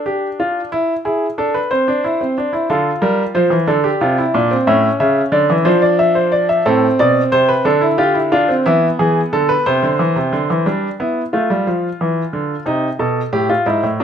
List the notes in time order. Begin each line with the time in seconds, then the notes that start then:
Already playing: D4
0.06 G4
0.40 F4
0.72 E4
1.05 E4 G#4
1.38 D4 A4
1.54 B4
1.71 C4 C5
1.88 D4
2.04 E4
2.21 C4
2.38 D4
2.53 E4
2.70 D3 F4 A4
3.02 G3 A#4
3.35 F3 C5
3.50 E3
3.67 D3 A4 D5
3.84 G4
4.01 C3 F4
4.18 E4
4.34 A#2 D4
4.51 C4
4.67 A2 C#4 E5
5.00 C#3 E5
5.32 D3 D5
5.50 E3
5.65 F3 D4 C5
5.82 D5
5.99 E5
6.15 C5
6.32 D5
6.49 E5
6.66 A2 C4 A4
6.99 B2 D5
7.32 C3 C5
7.49 B4
7.65 D3 D4 A4
7.81 E4
7.98 F4 G4
8.14 E4
8.32 D4 F4
8.48 C4
8.66 E3 B3 E4
8.99 E3 G#4
9.33 D3 A4
9.49 B4
9.66 C3 C5
9.83 D3
9.99 E3
10.16 C3
10.33 D3
10.50 E3
10.66 G3 D4
11.00 B3 E4
11.33 A3 F4
11.50 G3
11.67 F3
12.01 E3
12.33 D3
12.66 C3 D#4
12.99 B2 A4
13.33 A2 G4
13.49 F4
13.66 G#2 E4
13.83 A2
14.00 B2 D4